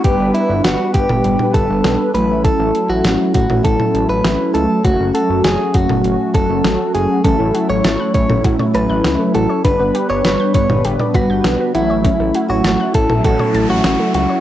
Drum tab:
HH |x-x-x-x-x-x-x-x-|x-x-x-x-x-x-x-x-|x-x-x-x-x-x-x-x-|x-x-x-x-x-x-x-x-|
SD |----o-------o---|----o-------o---|----o-------o---|----o-------o---|
T2 |-------o-o------|-------o-o------|-------o--------|-------o-o------|
BD |o-----o---o-----|o-----o-o-------|o-----o---o-----|o-----o-o-------|

HH |x-x-x-x-x-x-x-x-|x-x-x-x-x-x-x-x-|
SD |----o-------o---|----o-------o---|
T2 |-------o-o------|-------o-o------|
BD |o-----o---o-----|o-----o-o-------|